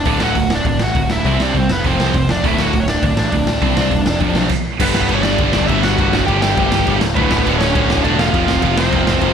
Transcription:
Already playing: D4 D5
0.05 D1 D2 A2 D3, kick, open hi-hat
0.20 D1 F#4, snare
0.25 F#5
0.35 D1 D2 A2, kick, open hi-hat
0.50 D4, snare
0.55 D5
0.65 D1 D2 A2 D4, kick, open hi-hat
0.69 D5
0.79 A1 F#4, snare
0.84 F#5
0.95 D1 D2 A2, kick, open hi-hat
1.10 D1 D2 A2 D3 E4 E5, snare
1.25 C2 C3 G3 C4, kick, open hi-hat
1.40 C2 D4 D5, snare
1.55 C2 C3 G3 C4 C5, kick, open hi-hat
1.69 F1 F2 C3 B3, snare
1.73 F3 B4
1.84 F1 F2 C3 F3 C4 C5, kick, open hi-hat
1.99 C2, snare
2.14 F1 F2 C3 C4 C5, kick, open hi-hat
2.28 F1 D4 D5, snare
2.43 D1 D2 A2 D3 E4 E5, kick, open hi-hat
2.58 D1 F#4 F#5, snare
2.73 D1 D2 A2, kick, open hi-hat
2.80 C#5
2.88 D4 D5, snare
3.02 D1 D2 A2, kick, open hi-hat
3.17 A1 D4 D5, snare
3.32 D1 D2 A2, kick, open hi-hat
3.46 D1 D2 A2 D3, snare
3.62 C2 C3 G3 C4, kick, open hi-hat
3.77 C2, snare
3.91 E1 C3 G3, kick, open hi-hat
4.06 F1 F2 C3 F3, snare
4.20 F1 F2 C3 F3, kick, open hi-hat
4.35 B1, snare
4.49 kick, crash
4.80 G1 G2 D3 G3 B3 B4, kick, crash
4.94 G1, snare
5.02 kick
5.09 G1 G2 D3 G3, kick, crash
5.15 C#5
5.23 D4 D5, snare
5.38 G1 G2 D3 G3, kick, crash
5.53 G1, snare
5.61 kick
5.67 G1 G2 D3 G3 E4 E5, kick, crash
5.83 F#4 F#5, snare
5.98 G1 G2 D3 G3, kick, crash
6.13 G1, snare
6.20 kick
6.26 G1 G2 D3 G3 G4 G5, kick, crash
6.42 G4 G5, snare
6.57 G1 G2 D3 G3, kick, crash
6.72 G1, snare
6.80 kick
6.87 G1 G2 D3 G3, kick, crash
7.01 D1, snare
7.15 D1 D2 A2 D3 B3 B4, kick, crash
7.30 D1, snare
7.39 kick
7.46 D1 D2 A2 D3, kick, crash
7.58 C#4 C#5, snare
7.75 D1 D2 A2 D3, kick, crash
7.90 D1, snare
7.97 kick
8.04 E1 D2 A2 D3 D4 D5, kick, crash
8.18 F4 F5, snare
8.34 F1 F2 C3 F3, kick, crash
8.48 F1, snare
8.56 kick
8.62 F1 F2 C3 F3 F4 F5, kick, crash
8.77 C4 C5, snare
8.92 F1 F2 C3 F3, kick, crash
9.07 F1, snare
9.15 kick
9.21 F1 F2 C3 F3, kick, crash

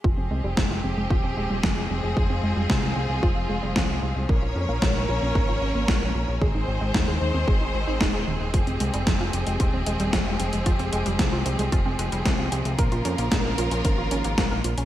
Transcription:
0.04 F1 F3 G#3 C4 F4 G4 G#4, kick
0.18 F1 C4
0.31 C2 G#3
0.44 F1 G3
0.57 F1 F3, kick, snare
0.71 F1 F4
0.84 F1 C4
0.97 F1 G#3
1.11 D#1 F4, kick
1.24 D#1 C4
1.37 D#1 G#3
1.50 D#1 G3
1.63 F1 F3, kick, snare
1.77 F1 F4
1.90 F1 C4
2.03 F1 G#3
2.17 F1 F4, kick
2.30 F1 C4
2.43 F1 G#3
2.57 F1 G3
2.70 C2 F3, kick, snare
2.83 C2 F4
2.96 C2 C4
3.10 C2 G#3
3.23 F1 F4, kick
3.36 F1 C4
3.49 F1 G#3
3.63 F1 G3
3.76 C2 F3, kick, snare
3.89 C2 F4
4.02 C2 C4
4.16 C2 G#3
4.29 A#1 A#3 C#4 A#4 C#5, kick
4.42 A#1 F4
4.56 F2 C#4
4.69 A#1 A#3
4.82 A#1 F3, kick, snare
4.95 A#1 A#4
5.09 A#1 F4
5.22 A#1 C#4
5.35 G#1 A#4, kick
5.49 G#1 F4
5.62 G#1 C#4
5.75 G#1 A#3
5.88 A#1 F3, kick, snare
6.02 A#1 A#4
6.15 A#1 F4
6.28 A#1 C#4
6.42 G#1 D#3 G#3 C4 G#4 C5, kick
6.55 G#1 D#4
6.68 G#1 C4
6.81 G#1 G#3
6.94 D#2 D#3, kick, snare
7.08 D#2 G#4
7.21 D#2 D#4
7.34 D#2 C4
7.48 G#1 G#4, kick
7.61 G#1 D#4
7.74 G#1 G#3
7.88 G#1 D#4
8.01 D#1 D#4, kick, snare
8.14 D#1 G#4
8.27 D#1 D#3
8.41 D#1 G#3
8.54 F1 F3 F4 G4, kick, closed hi-hat
8.67 F1 C4, closed hi-hat
8.80 C2 G#3, closed hi-hat
8.94 F1 G3, closed hi-hat
9.07 F1 F3, kick, snare, closed hi-hat
9.20 F1 F4
9.33 F1 C4, closed hi-hat
9.47 F1 G#3, closed hi-hat
9.60 D#1 F4, kick, closed hi-hat
9.73 D#1 C4
9.87 D#1 G#3, closed hi-hat
10.00 D#1 G3, closed hi-hat
10.13 F1 F3, kick, snare, closed hi-hat
10.26 F1 F4
10.40 F1 C4, closed hi-hat
10.53 F1 G#3, closed hi-hat
10.66 F1 F4, kick, closed hi-hat
10.79 F1 C4, closed hi-hat
10.93 F1 G#3, closed hi-hat
11.06 F1 G3, closed hi-hat
11.19 C2 F3, kick, snare, closed hi-hat
11.33 C2 F4
11.46 C2 C4, closed hi-hat
11.59 C2 G#3, closed hi-hat
11.72 F1 F4, kick, closed hi-hat
11.86 F1 C4
11.99 F1 G#3, closed hi-hat
12.12 F1 G3, closed hi-hat
12.25 C2 F3, kick, snare, closed hi-hat
12.39 C2 F4
12.52 C2 C4, closed hi-hat
12.65 C2 G#3, closed hi-hat
12.79 A#1 C#3 A#3 F4 A#4, kick, closed hi-hat
12.92 A#1 F4, closed hi-hat
13.05 F2 C#4, closed hi-hat
13.18 A#1 A#3, closed hi-hat
13.32 A#1 F3, kick, snare, closed hi-hat
13.45 A#1 A#4
13.58 A#1 F4, closed hi-hat
13.71 A#1 C#4, closed hi-hat
13.85 G#1 A#4, kick, closed hi-hat
13.98 G#1 F4
14.11 G#1 C#4, closed hi-hat
14.24 G#1 A#3, closed hi-hat
14.38 A#1 F3, kick, snare, closed hi-hat
14.51 A#1 A#4
14.64 A#1 F4, closed hi-hat
14.78 A#1 C#4, closed hi-hat

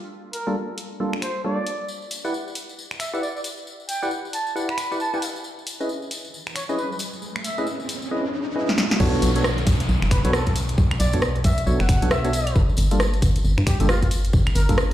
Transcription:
0.33 A#4, open hi-hat
0.47 G3 A#3 D4 F4 A4
0.78 open hi-hat
1.00 G3 A#3 D4 F4 A4
1.13 finger snap
1.22 C5, finger snap, open hi-hat
1.44 G3 A#3 D4 F4 A4 D5
1.67 open hi-hat
1.88 tambourine
2.02 tambourine
2.11 open hi-hat, tambourine
2.25 E4 G4 B4 D5 F#5, tambourine
2.34 tambourine
2.48 tambourine
2.55 open hi-hat, tambourine
2.69 tambourine
2.79 tambourine
2.91 finger snap, tambourine
3.00 E5, finger snap, open hi-hat, tambourine
3.14 E4 G4 B4 D5 E5 F#5, tambourine
3.22 D5, tambourine
3.36 D5, tambourine
3.44 open hi-hat, tambourine
3.57 tambourine
3.67 tambourine
3.80 tambourine
3.89 G5, open hi-hat, tambourine
4.02 E4 G4 B4 D5 F#5, tambourine
4.11 tambourine
4.25 tambourine
4.33 A5, open hi-hat, tambourine
4.47 tambourine
4.56 E4 G4 B4 D5 F#5, tambourine
4.69 B5, finger snap, tambourine
4.78 finger snap, open hi-hat, tambourine
4.91 E4 G4 B4 D5 F#5, tambourine
5.00 A5, tambourine
5.14 E4 G4 B4 D5 F#5, tambourine
5.22 open hi-hat, tambourine
5.36 tambourine
5.44 tambourine, riser
5.59 tambourine
5.67 open hi-hat, tambourine
5.80 C#4 E4 G#4 B4 D#5, tambourine
5.89 tambourine
6.02 tambourine
6.11 open hi-hat, tambourine
6.25 tambourine
6.34 tambourine
6.47 finger snap, tambourine
6.55 C#5, finger snap, open hi-hat, tambourine
6.69 C#4 E4 G#4 B4 C#5 D#5, tambourine
6.78 B4, tambourine
6.91 B4, tambourine
6.99 open hi-hat, tambourine
7.13 tambourine
7.22 tambourine
7.36 finger snap, tambourine
7.44 E5, open hi-hat, tambourine
7.58 C#4 E4 G#4 B4 D#5, tambourine
7.67 tambourine
7.80 tambourine
7.89 open hi-hat, tambourine
8.02 tambourine
8.11 C#4 E4 G#4 B4 D#5
8.56 C#4 E4 G#4 B4 D#5
8.69 snare
8.78 snare
8.91 snare
9.00 B1 B3 D4 F#4 A4 C#5, kick, crash, tambourine, downlifter
9.14 tambourine
9.22 B1, open hi-hat, tambourine
9.35 B3 D4 F#4 A4 C#5, closed hi-hat, tambourine
9.44 cross-stick, tambourine
9.58 closed hi-hat, tambourine
9.67 B1, kick, open hi-hat, tambourine
9.80 closed hi-hat, tambourine
9.89 B1, tambourine
10.02 F#1, finger snap, tambourine
10.11 B4, finger snap, kick, open hi-hat, tambourine
10.25 B1 B3 D4 F#4 A4 B4 C#5, closed hi-hat, tambourine
10.33 A4, cross-stick, tambourine
10.46 A4, kick, closed hi-hat, tambourine
10.56 open hi-hat, tambourine
10.69 closed hi-hat, tambourine
10.78 B1, kick, tambourine
10.91 finger snap, tambourine, claves
11.00 B1 D5, open hi-hat, tambourine
11.13 B3 D4 F#4 A4 C#5, kick, closed hi-hat, tambourine
11.22 cross-stick, tambourine
11.35 closed hi-hat, tambourine
11.44 B1 E5, kick, open hi-hat, tambourine
11.58 closed hi-hat, tambourine
11.67 B1 B3 D4 F#4 A4 C#5, tambourine
11.80 F#1 F#5, finger snap, tambourine
11.89 finger snap, kick, open hi-hat, tambourine
12.02 B1 B3 D4 F#4 A4 C#5, closed hi-hat, tambourine
12.11 E5, cross-stick, tambourine
12.25 B3 D4 F#4 A4 C#5, closed hi-hat, tambourine
12.33 open hi-hat, tambourine
12.47 closed hi-hat, tambourine, claves
12.56 G1, kick, tambourine
12.69 tambourine
12.77 G1, open hi-hat, tambourine
12.91 G3 A#3 D4 F4 A4, closed hi-hat, tambourine
13.00 cross-stick, tambourine
13.13 closed hi-hat, tambourine
13.22 G1, kick, open hi-hat, tambourine
13.36 closed hi-hat, tambourine
13.44 G1, tambourine
13.58 G2, finger snap, tambourine
13.67 G4, finger snap, kick, open hi-hat, tambourine
13.80 G1 G3 A#3 D4 F4 G4 A4, closed hi-hat, tambourine
13.89 F4, cross-stick, tambourine
14.02 F4, kick, closed hi-hat, tambourine
14.11 open hi-hat, tambourine
14.25 closed hi-hat, tambourine
14.33 G1, kick, tambourine
14.47 finger snap, tambourine, claves
14.55 G1 A#4, open hi-hat, tambourine
14.69 G3 A#3 D4 F4 A4, kick, closed hi-hat, tambourine
14.78 cross-stick, tambourine

